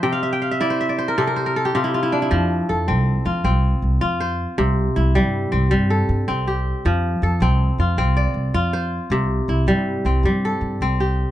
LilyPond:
<<
  \new Staff \with { instrumentName = "Kora" } { \time 12/8 \key f \major \tempo 4. = 106 << { g''16 f''16 e''16 g''16 f''16 e''16 d''16 c''16 e''16 d''16 c''16 bes'16 a'16 bes'16 c''16 bes'16 a'16 g'16 f'16 e'16 f'16 e'16 d'16 e'16~ | e'16 r1 r4. r16 | r1. | r1. |
r1. | } \\ { <c'' e''>8 r1 r4. | r4 a'4. f'4. r4 c''4~ | c''8 r8 e'4. c'4 a'4. g'4~ | g'8 r8 a'4. f'4 d''4. c''4~ |
c''8 r8 e'4. c'4 a'4. g'4 | } >> }
  \new Staff \with { instrumentName = "Kora" } { \clef bass \time 12/8 \key f \major c4 r8 e'4 r8 c4 r8 c4 r8 | f4 r8 c'4 r8 c'4 r8 f'4 r8 | c4 r8 g4 r8 g4 r8 c'4 r8 | f4 r8 c'4 r8 c'4 r8 f'4 r8 |
c4 r8 g4 r8 g4 r8 c'4 r8 | }
  \new Staff \with { instrumentName = "Upright bass" } { \clef bass \time 12/8 \key f \major r1. | f,4 f,8 c,4 f,8 c,4 c,8 f,4. | c,4 c,8 g,4 c,8 g,4 g,8 c,4. | f,4 f,8 c,4 f,8 c,4 c,8 f,4. |
c,4 c,8 g,4 c,8 g,4 g,8 c,4. | }
>>